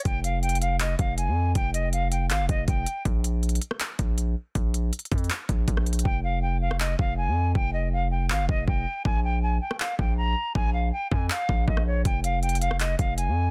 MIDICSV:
0, 0, Header, 1, 4, 480
1, 0, Start_track
1, 0, Key_signature, -4, "minor"
1, 0, Tempo, 375000
1, 68, Time_signature, 4, 2, 24, 8
1, 17288, End_track
2, 0, Start_track
2, 0, Title_t, "Flute"
2, 0, Program_c, 0, 73
2, 63, Note_on_c, 0, 79, 103
2, 260, Note_off_c, 0, 79, 0
2, 311, Note_on_c, 0, 77, 83
2, 504, Note_off_c, 0, 77, 0
2, 543, Note_on_c, 0, 79, 90
2, 740, Note_off_c, 0, 79, 0
2, 785, Note_on_c, 0, 77, 85
2, 980, Note_off_c, 0, 77, 0
2, 1029, Note_on_c, 0, 75, 87
2, 1223, Note_off_c, 0, 75, 0
2, 1267, Note_on_c, 0, 77, 88
2, 1462, Note_off_c, 0, 77, 0
2, 1504, Note_on_c, 0, 80, 87
2, 1957, Note_off_c, 0, 80, 0
2, 1991, Note_on_c, 0, 79, 103
2, 2184, Note_off_c, 0, 79, 0
2, 2225, Note_on_c, 0, 75, 81
2, 2421, Note_off_c, 0, 75, 0
2, 2473, Note_on_c, 0, 77, 91
2, 2665, Note_off_c, 0, 77, 0
2, 2706, Note_on_c, 0, 79, 73
2, 2901, Note_off_c, 0, 79, 0
2, 2954, Note_on_c, 0, 77, 100
2, 3146, Note_off_c, 0, 77, 0
2, 3193, Note_on_c, 0, 75, 95
2, 3385, Note_off_c, 0, 75, 0
2, 3430, Note_on_c, 0, 79, 86
2, 3880, Note_off_c, 0, 79, 0
2, 7743, Note_on_c, 0, 79, 104
2, 7939, Note_off_c, 0, 79, 0
2, 7988, Note_on_c, 0, 77, 80
2, 8182, Note_off_c, 0, 77, 0
2, 8222, Note_on_c, 0, 79, 88
2, 8419, Note_off_c, 0, 79, 0
2, 8466, Note_on_c, 0, 77, 86
2, 8661, Note_off_c, 0, 77, 0
2, 8709, Note_on_c, 0, 75, 84
2, 8903, Note_off_c, 0, 75, 0
2, 8947, Note_on_c, 0, 77, 88
2, 9142, Note_off_c, 0, 77, 0
2, 9183, Note_on_c, 0, 80, 85
2, 9636, Note_off_c, 0, 80, 0
2, 9666, Note_on_c, 0, 79, 104
2, 9861, Note_off_c, 0, 79, 0
2, 9900, Note_on_c, 0, 75, 80
2, 10098, Note_off_c, 0, 75, 0
2, 10148, Note_on_c, 0, 77, 94
2, 10342, Note_off_c, 0, 77, 0
2, 10383, Note_on_c, 0, 79, 71
2, 10579, Note_off_c, 0, 79, 0
2, 10630, Note_on_c, 0, 77, 97
2, 10824, Note_off_c, 0, 77, 0
2, 10868, Note_on_c, 0, 75, 97
2, 11063, Note_off_c, 0, 75, 0
2, 11109, Note_on_c, 0, 79, 83
2, 11559, Note_off_c, 0, 79, 0
2, 11585, Note_on_c, 0, 80, 95
2, 11781, Note_off_c, 0, 80, 0
2, 11831, Note_on_c, 0, 79, 86
2, 12024, Note_off_c, 0, 79, 0
2, 12069, Note_on_c, 0, 80, 80
2, 12263, Note_off_c, 0, 80, 0
2, 12305, Note_on_c, 0, 79, 77
2, 12500, Note_off_c, 0, 79, 0
2, 12542, Note_on_c, 0, 77, 87
2, 12738, Note_off_c, 0, 77, 0
2, 12789, Note_on_c, 0, 79, 76
2, 12983, Note_off_c, 0, 79, 0
2, 13022, Note_on_c, 0, 82, 82
2, 13476, Note_off_c, 0, 82, 0
2, 13506, Note_on_c, 0, 80, 100
2, 13701, Note_off_c, 0, 80, 0
2, 13743, Note_on_c, 0, 77, 77
2, 13939, Note_off_c, 0, 77, 0
2, 13987, Note_on_c, 0, 79, 90
2, 14182, Note_off_c, 0, 79, 0
2, 14228, Note_on_c, 0, 80, 85
2, 14422, Note_off_c, 0, 80, 0
2, 14468, Note_on_c, 0, 77, 86
2, 14919, Note_off_c, 0, 77, 0
2, 14953, Note_on_c, 0, 75, 78
2, 15145, Note_off_c, 0, 75, 0
2, 15191, Note_on_c, 0, 73, 81
2, 15384, Note_off_c, 0, 73, 0
2, 15422, Note_on_c, 0, 79, 100
2, 15619, Note_off_c, 0, 79, 0
2, 15670, Note_on_c, 0, 77, 84
2, 15863, Note_off_c, 0, 77, 0
2, 15903, Note_on_c, 0, 79, 85
2, 16099, Note_off_c, 0, 79, 0
2, 16144, Note_on_c, 0, 77, 89
2, 16340, Note_off_c, 0, 77, 0
2, 16390, Note_on_c, 0, 75, 84
2, 16584, Note_off_c, 0, 75, 0
2, 16626, Note_on_c, 0, 77, 91
2, 16821, Note_off_c, 0, 77, 0
2, 16861, Note_on_c, 0, 80, 86
2, 17288, Note_off_c, 0, 80, 0
2, 17288, End_track
3, 0, Start_track
3, 0, Title_t, "808-style bass"
3, 0, Program_c, 1, 38
3, 67, Note_on_c, 1, 29, 109
3, 1219, Note_off_c, 1, 29, 0
3, 1268, Note_on_c, 1, 29, 105
3, 1628, Note_on_c, 1, 41, 96
3, 1647, Note_off_c, 1, 29, 0
3, 1969, Note_off_c, 1, 41, 0
3, 1987, Note_on_c, 1, 29, 106
3, 2947, Note_on_c, 1, 32, 99
3, 2967, Note_off_c, 1, 29, 0
3, 3068, Note_on_c, 1, 29, 98
3, 3087, Note_off_c, 1, 32, 0
3, 3182, Note_off_c, 1, 29, 0
3, 3188, Note_on_c, 1, 29, 105
3, 3418, Note_off_c, 1, 29, 0
3, 3428, Note_on_c, 1, 29, 104
3, 3658, Note_off_c, 1, 29, 0
3, 3908, Note_on_c, 1, 34, 116
3, 4599, Note_off_c, 1, 34, 0
3, 5108, Note_on_c, 1, 34, 102
3, 5568, Note_off_c, 1, 34, 0
3, 5827, Note_on_c, 1, 34, 113
3, 6288, Note_off_c, 1, 34, 0
3, 6548, Note_on_c, 1, 41, 107
3, 6778, Note_off_c, 1, 41, 0
3, 7028, Note_on_c, 1, 34, 101
3, 7258, Note_off_c, 1, 34, 0
3, 7267, Note_on_c, 1, 34, 107
3, 7728, Note_off_c, 1, 34, 0
3, 7747, Note_on_c, 1, 29, 110
3, 8899, Note_off_c, 1, 29, 0
3, 8947, Note_on_c, 1, 29, 105
3, 9306, Note_on_c, 1, 41, 97
3, 9326, Note_off_c, 1, 29, 0
3, 9649, Note_off_c, 1, 41, 0
3, 9667, Note_on_c, 1, 29, 106
3, 10626, Note_on_c, 1, 32, 101
3, 10645, Note_off_c, 1, 29, 0
3, 10747, Note_on_c, 1, 29, 98
3, 10766, Note_off_c, 1, 32, 0
3, 10858, Note_off_c, 1, 29, 0
3, 10866, Note_on_c, 1, 29, 105
3, 11097, Note_off_c, 1, 29, 0
3, 11105, Note_on_c, 1, 29, 106
3, 11337, Note_off_c, 1, 29, 0
3, 11586, Note_on_c, 1, 34, 108
3, 12278, Note_off_c, 1, 34, 0
3, 12786, Note_on_c, 1, 34, 102
3, 13247, Note_off_c, 1, 34, 0
3, 13506, Note_on_c, 1, 34, 114
3, 13968, Note_off_c, 1, 34, 0
3, 14227, Note_on_c, 1, 41, 111
3, 14457, Note_off_c, 1, 41, 0
3, 14707, Note_on_c, 1, 34, 103
3, 14937, Note_off_c, 1, 34, 0
3, 14946, Note_on_c, 1, 34, 106
3, 15408, Note_off_c, 1, 34, 0
3, 15427, Note_on_c, 1, 29, 112
3, 16579, Note_off_c, 1, 29, 0
3, 16627, Note_on_c, 1, 29, 108
3, 16987, Note_on_c, 1, 41, 99
3, 17006, Note_off_c, 1, 29, 0
3, 17288, Note_off_c, 1, 41, 0
3, 17288, End_track
4, 0, Start_track
4, 0, Title_t, "Drums"
4, 67, Note_on_c, 9, 36, 114
4, 67, Note_on_c, 9, 42, 92
4, 195, Note_off_c, 9, 36, 0
4, 195, Note_off_c, 9, 42, 0
4, 309, Note_on_c, 9, 42, 79
4, 437, Note_off_c, 9, 42, 0
4, 548, Note_on_c, 9, 42, 36
4, 628, Note_off_c, 9, 42, 0
4, 628, Note_on_c, 9, 42, 47
4, 708, Note_off_c, 9, 42, 0
4, 708, Note_on_c, 9, 42, 55
4, 788, Note_off_c, 9, 42, 0
4, 788, Note_on_c, 9, 42, 73
4, 916, Note_off_c, 9, 42, 0
4, 1026, Note_on_c, 9, 42, 80
4, 1027, Note_on_c, 9, 39, 114
4, 1154, Note_off_c, 9, 42, 0
4, 1155, Note_off_c, 9, 39, 0
4, 1266, Note_on_c, 9, 42, 82
4, 1267, Note_on_c, 9, 36, 101
4, 1394, Note_off_c, 9, 42, 0
4, 1395, Note_off_c, 9, 36, 0
4, 1507, Note_on_c, 9, 42, 69
4, 1635, Note_off_c, 9, 42, 0
4, 1987, Note_on_c, 9, 42, 94
4, 1988, Note_on_c, 9, 36, 112
4, 2115, Note_off_c, 9, 42, 0
4, 2116, Note_off_c, 9, 36, 0
4, 2230, Note_on_c, 9, 42, 78
4, 2358, Note_off_c, 9, 42, 0
4, 2468, Note_on_c, 9, 42, 55
4, 2596, Note_off_c, 9, 42, 0
4, 2709, Note_on_c, 9, 42, 73
4, 2837, Note_off_c, 9, 42, 0
4, 2947, Note_on_c, 9, 42, 78
4, 2949, Note_on_c, 9, 39, 111
4, 3075, Note_off_c, 9, 42, 0
4, 3077, Note_off_c, 9, 39, 0
4, 3188, Note_on_c, 9, 36, 102
4, 3188, Note_on_c, 9, 42, 89
4, 3316, Note_off_c, 9, 36, 0
4, 3316, Note_off_c, 9, 42, 0
4, 3428, Note_on_c, 9, 36, 106
4, 3428, Note_on_c, 9, 42, 67
4, 3556, Note_off_c, 9, 36, 0
4, 3556, Note_off_c, 9, 42, 0
4, 3666, Note_on_c, 9, 42, 74
4, 3794, Note_off_c, 9, 42, 0
4, 3908, Note_on_c, 9, 36, 118
4, 3909, Note_on_c, 9, 42, 94
4, 4036, Note_off_c, 9, 36, 0
4, 4037, Note_off_c, 9, 42, 0
4, 4151, Note_on_c, 9, 42, 82
4, 4279, Note_off_c, 9, 42, 0
4, 4389, Note_on_c, 9, 42, 35
4, 4468, Note_off_c, 9, 42, 0
4, 4468, Note_on_c, 9, 42, 47
4, 4548, Note_off_c, 9, 42, 0
4, 4548, Note_on_c, 9, 42, 55
4, 4627, Note_off_c, 9, 42, 0
4, 4627, Note_on_c, 9, 42, 77
4, 4748, Note_on_c, 9, 37, 99
4, 4755, Note_off_c, 9, 42, 0
4, 4866, Note_on_c, 9, 42, 84
4, 4867, Note_on_c, 9, 39, 114
4, 4876, Note_off_c, 9, 37, 0
4, 4994, Note_off_c, 9, 42, 0
4, 4995, Note_off_c, 9, 39, 0
4, 5106, Note_on_c, 9, 42, 81
4, 5107, Note_on_c, 9, 36, 106
4, 5234, Note_off_c, 9, 42, 0
4, 5235, Note_off_c, 9, 36, 0
4, 5347, Note_on_c, 9, 42, 69
4, 5475, Note_off_c, 9, 42, 0
4, 5827, Note_on_c, 9, 36, 114
4, 5828, Note_on_c, 9, 42, 96
4, 5955, Note_off_c, 9, 36, 0
4, 5956, Note_off_c, 9, 42, 0
4, 6069, Note_on_c, 9, 42, 79
4, 6197, Note_off_c, 9, 42, 0
4, 6307, Note_on_c, 9, 42, 60
4, 6387, Note_off_c, 9, 42, 0
4, 6387, Note_on_c, 9, 42, 51
4, 6467, Note_off_c, 9, 42, 0
4, 6467, Note_on_c, 9, 42, 43
4, 6547, Note_off_c, 9, 42, 0
4, 6547, Note_on_c, 9, 42, 43
4, 6548, Note_on_c, 9, 36, 96
4, 6628, Note_off_c, 9, 42, 0
4, 6628, Note_on_c, 9, 42, 37
4, 6676, Note_off_c, 9, 36, 0
4, 6708, Note_off_c, 9, 42, 0
4, 6708, Note_on_c, 9, 42, 33
4, 6786, Note_off_c, 9, 42, 0
4, 6786, Note_on_c, 9, 42, 75
4, 6788, Note_on_c, 9, 39, 112
4, 6914, Note_off_c, 9, 42, 0
4, 6916, Note_off_c, 9, 39, 0
4, 7027, Note_on_c, 9, 36, 105
4, 7027, Note_on_c, 9, 42, 88
4, 7155, Note_off_c, 9, 36, 0
4, 7155, Note_off_c, 9, 42, 0
4, 7267, Note_on_c, 9, 36, 102
4, 7267, Note_on_c, 9, 42, 68
4, 7388, Note_on_c, 9, 37, 92
4, 7395, Note_off_c, 9, 36, 0
4, 7395, Note_off_c, 9, 42, 0
4, 7506, Note_on_c, 9, 46, 60
4, 7508, Note_on_c, 9, 42, 49
4, 7516, Note_off_c, 9, 37, 0
4, 7588, Note_off_c, 9, 42, 0
4, 7588, Note_on_c, 9, 42, 61
4, 7634, Note_off_c, 9, 46, 0
4, 7667, Note_off_c, 9, 42, 0
4, 7667, Note_on_c, 9, 42, 81
4, 7747, Note_on_c, 9, 36, 115
4, 7795, Note_off_c, 9, 42, 0
4, 7875, Note_off_c, 9, 36, 0
4, 8588, Note_on_c, 9, 37, 101
4, 8707, Note_on_c, 9, 39, 113
4, 8716, Note_off_c, 9, 37, 0
4, 8835, Note_off_c, 9, 39, 0
4, 8947, Note_on_c, 9, 36, 100
4, 9075, Note_off_c, 9, 36, 0
4, 9667, Note_on_c, 9, 36, 113
4, 9795, Note_off_c, 9, 36, 0
4, 10626, Note_on_c, 9, 39, 114
4, 10754, Note_off_c, 9, 39, 0
4, 10866, Note_on_c, 9, 36, 103
4, 10994, Note_off_c, 9, 36, 0
4, 11105, Note_on_c, 9, 36, 101
4, 11233, Note_off_c, 9, 36, 0
4, 11586, Note_on_c, 9, 36, 114
4, 11714, Note_off_c, 9, 36, 0
4, 12426, Note_on_c, 9, 37, 104
4, 12545, Note_on_c, 9, 39, 114
4, 12554, Note_off_c, 9, 37, 0
4, 12673, Note_off_c, 9, 39, 0
4, 12786, Note_on_c, 9, 36, 102
4, 12914, Note_off_c, 9, 36, 0
4, 13506, Note_on_c, 9, 36, 117
4, 13634, Note_off_c, 9, 36, 0
4, 14227, Note_on_c, 9, 36, 98
4, 14355, Note_off_c, 9, 36, 0
4, 14466, Note_on_c, 9, 39, 112
4, 14594, Note_off_c, 9, 39, 0
4, 14707, Note_on_c, 9, 36, 102
4, 14835, Note_off_c, 9, 36, 0
4, 14946, Note_on_c, 9, 36, 104
4, 15067, Note_on_c, 9, 37, 91
4, 15074, Note_off_c, 9, 36, 0
4, 15195, Note_off_c, 9, 37, 0
4, 15426, Note_on_c, 9, 42, 92
4, 15427, Note_on_c, 9, 36, 117
4, 15554, Note_off_c, 9, 42, 0
4, 15555, Note_off_c, 9, 36, 0
4, 15668, Note_on_c, 9, 42, 79
4, 15796, Note_off_c, 9, 42, 0
4, 15906, Note_on_c, 9, 42, 36
4, 15987, Note_off_c, 9, 42, 0
4, 15987, Note_on_c, 9, 42, 47
4, 16067, Note_off_c, 9, 42, 0
4, 16067, Note_on_c, 9, 42, 55
4, 16147, Note_off_c, 9, 42, 0
4, 16147, Note_on_c, 9, 42, 75
4, 16267, Note_on_c, 9, 37, 97
4, 16275, Note_off_c, 9, 42, 0
4, 16386, Note_on_c, 9, 42, 85
4, 16387, Note_on_c, 9, 39, 110
4, 16395, Note_off_c, 9, 37, 0
4, 16514, Note_off_c, 9, 42, 0
4, 16515, Note_off_c, 9, 39, 0
4, 16627, Note_on_c, 9, 36, 104
4, 16627, Note_on_c, 9, 42, 81
4, 16755, Note_off_c, 9, 36, 0
4, 16755, Note_off_c, 9, 42, 0
4, 16867, Note_on_c, 9, 42, 68
4, 16995, Note_off_c, 9, 42, 0
4, 17288, End_track
0, 0, End_of_file